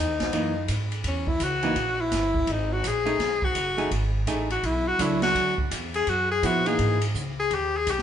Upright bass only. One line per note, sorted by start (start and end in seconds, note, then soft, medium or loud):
0.07 0.19 D#2 soft
0.20 0.31 B1 medium
0.33 0.67 F#2 medium
0.68 1.03 G#2 medium
1.04 1.39 E2 medium
1.40 1.75 C#2 medium
1.76 2.11 A#1 medium
2.11 2.46 G1 medium
2.47 2.82 G#1 medium
2.84 3.18 A#1 medium
3.19 3.54 B1 medium
3.55 3.90 F#1 medium
3.91 4.26 G#1 medium
4.27 4.62 A1 medium
4.63 4.98 B1 medium
4.98 5.33 C#2 medium
5.35 5.70 D2 medium
5.71 6.06 E2 medium
6.07 6.42 F#2 medium
6.43 6.77 A#2 medium
6.79 7.14 G#2 medium
7.15 7.50 C#2 medium
7.51 7.85 D#2 medium
7.87 8.02 B1 medium